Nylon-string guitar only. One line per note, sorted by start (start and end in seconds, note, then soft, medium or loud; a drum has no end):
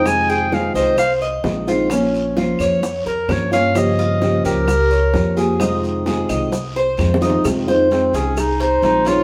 0.04 0.50 C3 medium
0.04 0.51 D#3 medium
0.04 0.51 G#3 medium
0.04 0.52 C4 medium
0.04 0.52 F4 medium
0.51 0.96 C3 medium
0.51 0.96 D#3 medium
0.51 0.97 G#3 medium
0.51 0.97 C4 medium
0.51 0.97 F4 medium
0.97 muted nylon-string guitar stroke medium
1.43 1.66 D#3 medium
1.43 1.67 G#3 medium
1.43 1.67 C4 medium
1.43 1.66 F4 medium
1.67 1.90 D#3 medium
1.67 1.91 G#3 medium
1.67 1.90 C4 medium
1.67 1.90 F4 medium
1.90 2.35 F3 medium
1.90 2.36 A#3 medium
1.90 2.37 C#4 medium
1.90 2.37 F4 medium
2.36 2.81 F3 medium
2.36 2.81 A#3 medium
2.36 2.82 C#4 medium
2.36 2.82 F4 medium
2.82 muted nylon-string guitar stroke medium
3.29 3.51 F3 medium
3.29 3.52 A#3 medium
3.29 3.52 C#4 medium
3.29 3.50 F4 medium
3.51 3.74 A#3 medium
3.51 3.75 C#4 medium
3.51 3.74 F4 medium
3.75 4.20 C#3 medium
3.75 4.20 F3 medium
3.75 4.21 A#3 medium
3.75 4.21 F4 medium
3.75 4.21 G4 medium
4.21 4.66 C#3 medium
4.21 4.66 F3 medium
4.21 4.67 A#3 medium
4.21 4.67 F4 medium
4.21 4.67 G4 medium
4.67 muted nylon-string guitar stroke medium
5.13 5.36 F3 medium
5.13 5.36 A#3 medium
5.13 5.36 F4 medium
5.13 5.35 G4 medium
5.37 5.60 F3 medium
5.37 5.60 A#3 medium
5.37 5.60 F4 medium
5.37 5.59 G4 medium
5.60 6.05 C3 medium
5.60 6.05 D#3 medium
5.60 6.06 G#3 medium
5.60 6.06 C4 medium
5.60 6.06 F4 medium
6.06 6.51 C3 medium
6.06 6.51 D#3 medium
6.06 6.52 G#3 medium
6.06 6.52 C4 medium
6.06 6.52 F4 medium
6.52 muted nylon-string guitar stroke medium
6.98 7.21 D#3 soft
6.98 7.21 G#3 soft
6.98 7.21 C4 medium
6.98 7.20 F4 medium
7.21 7.44 D#3 medium
7.21 7.45 G#3 medium
7.21 7.44 C4 medium
7.21 7.44 F4 medium
7.45 7.67 C3 medium
7.45 7.67 D#3 medium
7.45 7.68 G#3 medium
7.45 7.67 C4 medium
7.45 7.66 F4 medium
7.68 7.89 D#3 medium
7.68 7.89 G#3 medium
7.68 7.90 C4 medium
7.68 7.90 F4 medium
7.90 8.36 D#3 medium
7.90 8.36 G#3 medium
7.90 8.36 C4 medium
7.90 8.36 F4 medium
8.36 muted nylon-string guitar stroke medium
8.83 9.05 D#3 soft
8.83 9.06 G#3 medium
8.83 9.06 C4 medium
8.83 9.05 F4 medium
9.06 9.23 D#3 medium
9.06 9.23 G#3 medium
9.06 9.23 C4 medium
9.06 9.23 F4 medium